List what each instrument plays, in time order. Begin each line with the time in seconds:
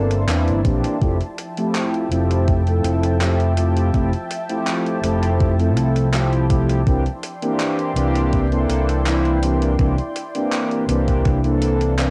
Already playing: fingered electric bass G1, analog polysynth E3 A#3 C4 D4 A4, analog synth pad E4 D5 A5 C6
0.11 closed hi-hat
0.27 fingered electric bass E2, analog polysynth E3 A#3 C4 D4 E4, clap, closed hi-hat
0.47 fingered electric bass G1, closed hi-hat
0.63 fingered electric bass A#1, analog polysynth E3 A#3 C4 D4 G4, kick, closed hi-hat
0.84 closed hi-hat
1.00 fingered electric bass F1, analog polysynth F3 A3 C4 E4 G4, analog synth pad F3 E5 G5 A5, kick, closed hi-hat
1.21 closed hi-hat
1.38 closed hi-hat
1.56 analog polysynth F3 A3 C4 E4 G4, closed hi-hat
1.75 clap, closed hi-hat
1.94 closed hi-hat
2.11 fingered electric bass F1, analog polysynth F3 A3 C4 E4 G4, closed hi-hat
2.31 closed hi-hat
2.48 kick, closed hi-hat
2.67 analog polysynth F3 A3 C4 E4 A4, closed hi-hat
2.84 fingered electric bass F1, closed hi-hat
3.03 closed hi-hat
3.20 analog polysynth F3 A3 C4 E4 G4, clap, closed hi-hat
3.40 closed hi-hat
3.56 analog polysynth F3 A3 C4 E4 G4, closed hi-hat
3.77 closed hi-hat
3.93 fingered electric bass F1, analog polysynth F3 A3 C4 E4 G4, kick, closed hi-hat
4.13 closed hi-hat
4.31 closed hi-hat
4.48 analog polysynth F3 A3 C4 E4 G4, closed hi-hat
4.67 clap, closed hi-hat
4.86 closed hi-hat
5.02 fingered electric bass F1, analog polysynth F3 A3 C4 E4 G4, closed hi-hat
5.23 closed hi-hat
5.40 kick, closed hi-hat
5.58 analog polysynth F3 A3 C4 E4 A4, closed hi-hat
5.76 fingered electric bass C2, closed hi-hat
5.96 closed hi-hat
6.12 analog polysynth F3 A3 C4 E4 G4, clap, closed hi-hat
6.33 closed hi-hat
6.48 analog polysynth F3 A3 C4 E4 G4, kick, closed hi-hat
6.69 closed hi-hat
6.86 fingered electric bass C2, analog polysynth E3 A#3 C4 D4 G4, analog synth pad E4 D5 G5 C6, kick, closed hi-hat
7.06 closed hi-hat
7.23 closed hi-hat
7.41 analog polysynth E3 A#3 C4 D4 G4, closed hi-hat
7.60 clap, closed hi-hat
7.79 closed hi-hat
7.95 fingered electric bass C2, analog polysynth E3 A#3 C4 D4 G4, closed hi-hat
8.15 closed hi-hat
8.33 kick, closed hi-hat
8.51 analog polysynth E3 A#3 C4 D4 A4, closed hi-hat
8.69 fingered electric bass C2, closed hi-hat
8.89 closed hi-hat
9.05 analog polysynth E3 A#3 C4 D4 E4, clap, closed hi-hat
9.25 closed hi-hat
9.42 analog polysynth E3 A#3 C4 D4 G4, closed hi-hat
9.62 closed hi-hat
9.78 fingered electric bass C2, analog polysynth E3 A#3 C4 D4 G4, kick, closed hi-hat
9.98 closed hi-hat
10.16 closed hi-hat
10.34 analog polysynth E3 A#3 C4 D4 G4, closed hi-hat
10.52 clap, closed hi-hat
10.71 closed hi-hat
10.88 fingered electric bass C2, analog polysynth E3 A#3 C4 D4 G4, closed hi-hat
11.08 kick, closed hi-hat
11.25 fingered electric bass C2, kick, closed hi-hat
11.43 analog polysynth E3 A#3 C4 D4 A4, closed hi-hat
11.62 closed hi-hat
11.81 closed hi-hat
11.98 analog polysynth E3 A#3 C4 D4 E4, clap, closed hi-hat